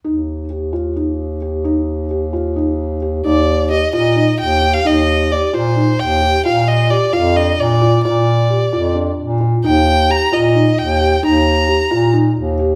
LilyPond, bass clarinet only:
\new Staff \with { instrumentName = "Bass clarinet" } { \clef bass \time 7/8 \key ees \major \tempo 4 = 131 ees,2.~ ees,8~ | ees,2.~ ees,8 | ees,4. bes,4 ees,4 | ees,4. bes,4 ees,4 |
bes,4. f,4 bes,4 | bes,4. f,4 bes,4 | ees,4. bes,4 ees,4 | ees,4. bes,4 ees,4 | }